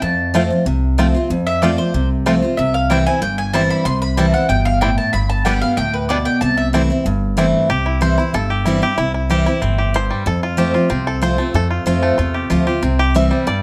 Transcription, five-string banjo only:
0.35 0.42 A3 medium
0.35 0.42 C4 medium
0.35 0.42 F4 medium
0.99 1.06 A3 medium
0.99 1.06 C4 medium
0.99 1.06 F4 medium
1.63 1.70 A3 medium
1.63 1.70 C4 medium
1.63 1.70 F4 medium
2.26 2.33 A3 medium
2.26 2.34 C4 medium
2.26 2.34 F4 medium
2.90 2.97 G3 medium
2.90 2.98 C4 medium
2.90 2.98 E4 medium
3.54 3.61 G3 medium
3.54 3.61 C4 medium
3.54 3.62 E4 medium
4.17 4.25 G3 medium
4.17 4.25 C4 medium
4.17 4.25 E4 medium
4.82 4.89 G3 medium
4.82 4.89 C4 medium
4.82 4.89 E4 medium
5.46 5.53 G3 medium
5.46 5.53 B3 medium
5.46 5.53 D4 medium
6.10 6.17 G3 medium
6.10 6.17 B3 medium
6.10 6.17 D4 medium
6.74 6.81 G3 medium
6.74 6.81 C4 medium
6.74 6.81 E4 medium
7.38 7.45 G3 medium
7.38 7.45 C4 medium
7.38 7.45 E4 medium
7.70 8.00 G4 loud
7.86 8.17 E4 medium
8.02 8.32 C5 loud
8.18 8.63 E4 medium
8.34 8.84 A4 medium
8.50 8.82 G4 medium
8.65 8.96 E4 medium
8.83 8.99 G4 medium
8.98 9.13 E4 medium
9.14 9.45 E4 medium
9.30 9.60 G4 medium
9.46 9.91 E4 medium
9.62 10.90 C4 medium
9.78 10.23 G4 medium
9.96 10.27 C5 loud
10.10 10.26 G3 medium
10.27 10.42 A4 loud
10.43 10.73 F4 medium
10.58 11.03 G4 medium
10.74 11.07 F4 medium
10.90 12.30 C4 medium
11.07 11.22 A4 medium
11.23 11.55 C5 loud
11.38 11.83 A3 medium
11.55 11.70 A4 loud
11.70 11.85 F4 medium
11.87 12.16 F4 medium
12.03 12.47 A3 medium
12.18 12.49 F4 medium
12.34 12.66 G4 medium
12.50 12.82 F4 medium
12.67 12.82 G4 medium
12.83 13.50 C4 medium
12.99 13.14 G4 loud
13.16 13.47 E5 loud
13.31 13.62 G3 medium
13.47 13.62 D5 loud

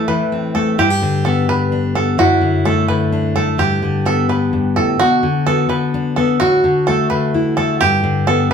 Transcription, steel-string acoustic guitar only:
0.00 0.78 A2 medium
0.00 0.54 A3 medium
0.00 0.77 E4 medium
0.08 0.75 E3 medium
0.32 0.76 C4 medium
0.55 0.76 A3 medium
0.78 2.16 G2 medium
0.78 0.90 E4 medium
0.90 2.18 G4 soft
1.02 1.48 D3 medium
1.26 1.94 B3 medium
1.49 2.40 D3 medium
1.72 2.22 D4 soft
1.96 2.16 B3 medium
2.18 3.56 F#2 medium
2.18 3.59 E4 medium
2.41 2.87 D3 medium
2.66 3.35 A3 medium
2.89 3.81 D3 medium
3.12 5.94 D4 medium
3.36 3.57 A3 medium
3.58 4.52 G2 medium
3.58 4.97 G4 medium
3.82 4.28 D3 medium
4.05 4.97 B3 medium
4.29 5.22 D3 medium
4.53 4.76 G2 medium
4.76 5.00 A2 medium
5.00 5.23 B2 medium
5.00 6.38 F#4 medium
5.23 5.68 D3 medium
5.47 6.16 B3 medium
5.69 6.63 D3 medium
5.94 7.34 D4 medium
6.17 6.38 B3 medium
6.40 6.64 A2 medium
6.40 7.78 F#4 medium
6.64 7.10 D3 medium
6.88 7.56 A3 medium
7.11 8.02 D3 medium
7.34 7.78 E4 medium
7.58 7.78 A3 medium
7.80 8.54 G2 medium
7.80 8.54 G4 medium
8.03 8.49 D3 medium
8.28 8.54 B3 medium

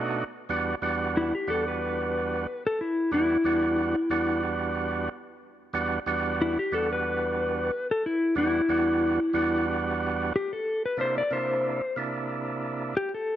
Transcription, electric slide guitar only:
1.17 1.34 E4 medium
1.35 1.49 G4 medium
1.50 1.67 A4 medium
1.68 2.62 B4 medium
2.67 2.80 A4 medium
2.81 3.12 E4 medium
3.14 4.40 E4 medium
6.42 6.58 E4 medium
6.59 6.73 G4 medium
6.74 6.91 A4 medium
6.93 7.87 B4 loud
7.91 8.05 A4 medium
8.06 8.37 E4 medium
8.38 9.64 E4 medium
10.36 10.51 G4 medium
10.53 10.83 A4 medium
10.86 10.99 B4 medium
11.01 11.17 C5 medium
11.18 11.31 D5 medium
11.33 11.95 C5 loud
12.97 13.13 G4 medium
13.14 13.36 A4 medium

